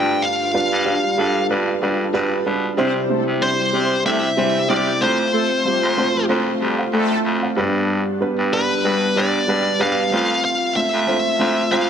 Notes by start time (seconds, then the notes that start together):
Already playing: G2 G3 D4 F4 B4 G5
0.22 F5
0.54 G3 D4 F4 B4
0.72 G2
0.85 G3 D4 F4 B4
1.17 G2 G3 D4 F4 A4
1.49 G2 G3 D4 F4 B4
1.82 G2 G3 D4 F4 B4
2.13 G2 G3 D4 F4 B4
2.45 B2 G3 D4 F4 B4
2.77 C3 G3 C4 E4 G4 C5
3.09 G3 A3 C4 E4 A4 C5
3.27 C3
3.41 G3 C4 E4 C5
3.59 G3 G4
3.73 C3 G3 C4 E4 C5
4.05 C3 G3 A3 C4 E4 A4 C5 E5
4.37 E3 G3 C4 E4 G4 C5
4.69 C3 G3 C4 E4 G4 C5 D5
5.01 F2 A3 C4 F4 C5
5.33 A3 A4
5.65 G3 A3 C4 F4 G4 C5
5.83 F2
5.97 A3 C4 F4 C5
6.15 F3 F4
6.29 F2 A3 C4 F4 A4 C5
6.61 F2 G3 G4
6.79 C5 F5
6.93 F2 A3 A4 D5 G5
7.11 E5 A5
7.25 F2
7.43 C5 F5
7.56 G2 G3 B3 D4 B4
8.21 G3 B3 D4 B4
8.38 G2
8.52 G3 B3 D4 B4
8.84 G2 G3 B3 D4 B4
9.16 G2 G3 B3 D4 B4 D5
9.48 G2 G3 B3 D4 B4
9.79 G2 G3 B3 D4 B4 F5
10.11 F2 A3 C4 F4 C5
10.45 F5
10.75 A3 C4 F4 C5 E5
10.94 F2
11.07 A3 C4 F4 C5
11.39 F2 A3 C4 F4 C5
11.71 F2 A3 C4 F4 C5 F5